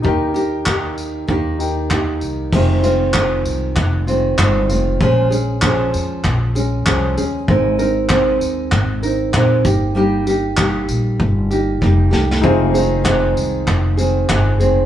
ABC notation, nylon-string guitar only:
X:1
M:4/4
L:1/8
Q:"Swing 16ths" 1/4=97
K:Fm
V:1 name="Nylon-string guitar"
[E,B,EG] [B,EG] [E,B,EG]2 [E,B,EG]2 [E,B,EG]2 | [F,,C,E,A,CF] [E,A,CF] [E,A,CF]3 [E,A,CF] [E,A,CF] [E,A,CF] | [B,,F,A,DA] [A,DA] [F,A,DA]3 [A,DA] [F,A,DA] [A,DA] | [A,CEB] [CEB] [A,CEB]3 [CEB] [A,CEB] [B,EG] |
[G,B,EG] [B,EG] [G,B,EG]3 [B,EG] [G,B,EG] [B,EG] | [F,,C,E,A,CA] [E,A,CA] [E,A,CA]3 [E,A,CA] [E,A,CA] [E,A,CA] |]